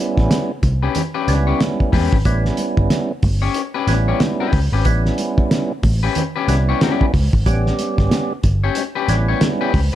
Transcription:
0.00 0.52 G3 medium
0.00 0.52 B3 medium
0.00 0.52 C#4 medium
0.00 0.52 E4 loud
0.17 0.27 A1 medium
0.17 kick loud
0.17 snare soft
0.31 snare loud
0.31 closed hi-hat loud
0.31 high conga medium
0.63 0.87 C2 medium
0.63 kick loud
0.63 closed hi-hat medium
0.63 muted conga soft
0.82 1.01 C#4 medium
0.82 1.01 G4 medium
0.82 1.01 B4 medium
0.95 closed hi-hat medium
0.95 muted conga soft
0.95 low conga medium
1.14 1.33 C#4 medium
1.14 1.33 G4 medium
1.14 1.33 B4 medium
1.28 1.52 C#2 medium
1.28 1.91 G3 medium
1.28 1.91 B3 medium
1.28 1.91 C#4 medium
1.28 1.36 D4 medium
1.28 snare soft
1.28 closed hi-hat medium
1.35 1.95 E4 medium
1.47 1.61 C#4 soft
1.47 1.60 G4 medium
1.47 1.60 C#5 medium
1.60 snare loud
1.60 closed hi-hat medium
1.60 high conga medium
1.80 kick medium
1.92 2.07 E2 medium
1.92 2.16 C#4 medium
1.92 2.16 G4 medium
1.92 2.16 B4 medium
1.92 kick medium
1.92 open hi-hat medium
1.92 high conga medium
2.12 2.22 G#1 loud
2.12 kick medium
2.25 2.49 A1 loud
2.25 3.12 G3 medium
2.25 3.12 B3 medium
2.25 3.12 C#4 medium
2.25 3.12 E4 medium
2.25 kick loud
2.25 closed hi-hat medium
2.25 muted conga medium
2.45 snare soft
2.57 closed hi-hat medium
2.57 muted conga soft
2.77 2.87 G1 loud
2.77 kick loud
2.90 snare loud
2.90 closed hi-hat medium
2.90 high conga medium
3.23 3.47 G1 loud
3.23 kick loud
3.23 open hi-hat medium
3.23 muted conga medium
3.42 3.61 C#4 medium
3.42 3.61 G4 medium
3.42 3.60 C#5 medium
3.54 closed hi-hat medium
3.74 3.94 C#4 medium
3.74 3.93 G4 medium
3.74 3.93 B4 medium
3.87 4.12 A1 loud
3.87 4.51 G3 medium
3.87 4.52 B3 medium
3.87 4.52 C#4 medium
3.87 4.52 E4 medium
3.87 snare soft
3.87 closed hi-hat medium
4.08 4.21 C#4 medium
4.08 4.21 G4 medium
4.08 4.21 C#5 medium
4.20 snare loud
4.20 closed hi-hat medium
4.20 high conga medium
4.40 4.59 C#4 medium
4.40 4.59 G4 medium
4.40 4.58 B4 medium
4.53 4.67 C#2 medium
4.53 kick medium
4.53 open hi-hat medium
4.53 high conga medium
4.72 4.82 G#1 medium
4.72 4.86 C#4 medium
4.72 4.86 G4 medium
4.72 4.86 B4 medium
4.85 5.09 A1 loud
4.85 5.72 G3 medium
4.85 5.72 B3 medium
4.85 5.72 C#4 medium
4.85 5.73 E4 loud
4.85 kick loud
4.85 closed hi-hat medium
4.85 muted conga medium
5.06 snare soft
5.18 closed hi-hat medium
5.18 muted conga soft
5.38 muted picked electric bass stroke medium
5.38 kick loud
5.51 snare loud
5.51 closed hi-hat medium
5.51 high conga medium
5.83 6.07 A1 loud
5.83 kick loud
5.83 open hi-hat medium
5.83 muted conga medium
6.03 6.22 C#4 medium
6.03 6.22 G4 medium
6.03 6.21 B4 medium
6.15 closed hi-hat medium
6.15 muted conga soft
6.15 low conga medium
6.36 6.55 C#4 medium
6.36 6.54 G4 medium
6.36 6.54 B4 medium
6.48 6.72 C2 medium
6.48 7.12 G3 medium
6.48 7.12 B3 medium
6.48 7.12 C#4 medium
6.48 7.12 E4 medium
6.48 snare soft
6.48 closed hi-hat medium
6.69 6.80 C#4 medium
6.69 6.81 G4 medium
6.69 6.81 C#5 medium
6.81 7.04 C#4 medium
6.81 7.05 G4 medium
6.81 7.05 B4 medium
6.81 snare loud
6.81 closed hi-hat medium
6.81 high conga medium
7.01 kick loud
7.13 7.28 C#2 medium
7.13 kick medium
7.13 open hi-hat medium
7.13 high conga medium
7.33 7.43 G#1 medium
7.33 kick medium
7.46 7.70 A1 loud
7.46 8.33 G3 medium
7.46 8.33 B3 medium
7.46 8.33 C#4 medium
7.46 8.33 G4 loud
7.46 kick loud
7.46 closed hi-hat loud
7.46 muted conga medium
7.67 snare soft
7.79 closed hi-hat medium
7.79 muted conga soft
7.98 8.08 G1 medium
7.98 kick loud
7.98 snare soft
8.11 snare loud
8.11 closed hi-hat loud
8.11 high conga medium
8.43 8.68 G1 loud
8.43 kick loud
8.43 closed hi-hat medium
8.43 muted conga soft
8.64 8.82 C#4 medium
8.64 8.82 G4 medium
8.64 8.82 C#5 medium
8.75 closed hi-hat medium
8.75 muted conga soft
8.95 9.15 C#4 medium
8.95 9.14 G4 medium
8.95 9.14 B4 medium
9.08 9.33 A1 medium
9.08 9.72 G3 medium
9.08 9.73 B3 medium
9.08 9.73 C#4 medium
9.08 9.73 E4 medium
9.08 snare soft
9.08 closed hi-hat medium
9.28 9.42 C#4 soft
9.28 9.42 G4 medium
9.28 9.41 C#5 medium
9.41 snare loud
9.41 closed hi-hat medium
9.41 high conga medium
9.61 9.80 C#4 medium
9.61 9.79 G4 medium
9.61 9.79 B4 medium
9.74 9.88 C#2 medium
9.74 kick medium
9.74 open hi-hat medium
9.74 high conga medium

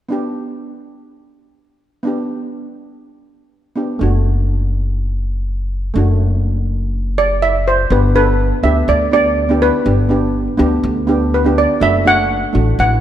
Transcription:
0.09 2.00 B3 soft
0.09 2.01 D4 soft
0.09 2.02 G4 medium
2.03 3.71 B3 medium
2.03 3.72 D4 soft
2.07 3.73 G4 medium
3.76 4.00 B3 soft
3.76 4.00 D4 soft
3.76 4.01 G4 soft
3.99 5.92 F#1 medium
3.99 5.91 A3 soft
3.99 5.92 D4 soft
3.99 5.93 F#4 medium
5.94 7.87 F#1 medium
5.94 7.86 A3 medium
5.94 7.87 D4 medium
5.94 7.88 F#4 medium
7.18 7.43 D5 medium
7.42 7.65 E5 medium
7.68 7.92 C5 medium
7.90 8.51 G1 medium
7.90 8.05 B3 medium
7.90 8.06 D4 soft
7.90 8.06 G4 medium
7.90 8.14 B4 medium
8.15 8.45 B3 medium
8.15 8.45 D4 medium
8.15 8.45 A4 medium
8.15 8.66 B4 medium
8.63 8.84 D2 medium
8.63 8.93 B3 medium
8.63 8.93 D4 medium
8.63 8.94 G4 medium
8.63 8.86 E5 medium
8.88 9.69 D2 medium
8.88 9.11 D5 medium
9.11 9.34 B3 medium
9.11 9.35 D4 medium
9.11 9.35 G4 medium
9.11 9.63 D5 medium
9.49 9.71 B3 medium
9.49 9.72 D4 medium
9.49 9.72 G4 medium
9.62 10.56 B4 medium
9.85 10.46 G1 medium
9.85 10.00 B3 medium
9.85 10.01 D4 medium
9.85 10.01 G4 medium
10.09 10.39 B3 medium
10.09 10.40 D4 medium
10.09 10.40 G4 medium
10.57 10.79 D2 medium
10.57 10.88 B3 medium
10.57 10.88 D4 medium
10.57 10.89 G4 medium
10.83 11.64 D2 medium
11.07 11.30 B3 medium
11.07 11.30 D4 medium
11.07 11.31 G4 medium
11.34 11.59 B4 medium
11.44 11.67 B3 medium
11.44 11.67 D4 medium
11.44 11.68 G4 medium
11.58 11.83 D5 medium
11.80 12.42 F#1 medium
11.80 11.96 A3 medium
11.80 11.97 D4 medium
11.80 11.97 F#4 medium
11.80 12.07 E5 medium
12.05 12.35 A3 medium
12.05 12.35 D4 medium
12.05 12.36 F#4 medium
12.05 12.79 F#5 medium
12.53 12.75 A1 medium
12.53 12.83 A3 medium
12.53 12.84 D4 medium
12.53 12.84 F#4 medium
12.79 13.01 A1 medium
12.79 12.91 F#5 medium

